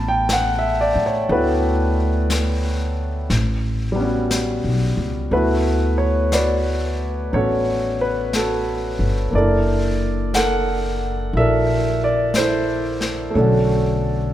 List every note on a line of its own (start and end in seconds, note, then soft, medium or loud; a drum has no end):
0.00 0.91 A1 medium
0.00 1.29 A3 soft
0.00 1.30 B3 soft
0.00 1.32 C#4 soft
0.00 1.30 E4 soft
0.00 1.31 F#4 medium
0.00 0.10 A5 medium
0.00 3.33 B5 medium
0.08 0.27 G5 medium
0.29 0.64 F#5 medium
0.29 brush sweep soft
0.29 snare soft
0.29 hi-hat pedal soft
0.59 0.93 E5 medium
0.81 1.05 D5 medium
0.95 1.27 A2 medium
1.06 1.26 C#5 medium
1.29 3.26 D2 medium
1.29 3.31 A3 soft
1.29 3.31 B3 soft
1.29 3.32 E4 soft
1.29 3.32 F#4 medium
1.29 3.28 B4 medium
1.29 brush sweep soft
2.30 brush sweep soft
2.30 snare soft
2.30 hi-hat pedal soft
3.30 4.60 A1 medium
3.30 brush sweep soft
3.30 snare soft
3.92 5.29 G3 soft
3.92 5.31 B3 soft
4.00 5.33 C#4 soft
4.04 5.32 F#4 soft
4.31 brush sweep soft
4.31 snare soft
4.31 hi-hat pedal medium
4.64 4.96 B1 medium
4.97 5.29 C#2 medium
5.31 7.28 D2 medium
5.31 9.33 A3 soft
5.31 7.31 B3 soft
5.31 9.34 E4 soft
5.31 6.33 F#4 medium
5.31 5.95 B4 medium
5.31 brush sweep soft
5.98 6.29 C#5 medium
6.32 7.34 F#4 soft
6.32 8.00 B4 medium
6.32 7.36 D5 medium
6.32 brush sweep soft
6.32 snare soft
6.32 hi-hat pedal soft
7.32 8.95 A1 medium
7.32 9.33 B3 soft
7.32 9.34 C#4 soft
7.32 8.34 F#4 soft
7.32 8.34 A4 medium
7.32 8.01 C#5 medium
7.32 brush sweep soft
8.01 8.35 B4 medium
8.33 9.30 F#4 soft
8.33 9.13 A4 medium
8.33 brush sweep soft
8.33 snare soft
8.33 hi-hat pedal soft
8.99 9.30 G1 medium
9.31 11.29 F#1 medium
9.31 13.33 A#3 soft
9.31 13.34 D4 soft
9.31 brush sweep soft
9.35 11.34 E4 soft
9.35 10.34 A4 medium
9.35 10.35 A#4 medium
9.35 10.30 D5 medium
10.34 11.36 A4 medium
10.34 11.36 A#4 medium
10.34 11.37 F#5 medium
10.34 brush sweep soft
10.34 snare soft
10.34 hi-hat pedal medium
11.33 13.30 A#1 medium
11.33 12.36 E4 soft
11.33 13.35 F#4 soft
11.33 12.36 A4 medium
11.33 12.03 E5 medium
11.33 brush sweep soft
11.38 13.32 A#4 medium
11.38 12.02 D5 soft
12.04 12.37 D5 medium
12.34 13.32 E4 medium
12.34 13.32 A4 soft
12.34 13.14 C5 medium
12.34 brush sweep soft
12.34 snare soft
12.34 hi-hat pedal soft
13.01 snare soft
13.30 14.33 A3 soft
13.30 14.33 C#5 soft
13.30 brush sweep soft
13.35 14.31 B1 medium
13.35 14.33 D3 soft
13.35 14.33 C#4 soft
13.35 14.33 D4 soft
13.35 14.30 A4 medium
13.41 14.33 F#4 soft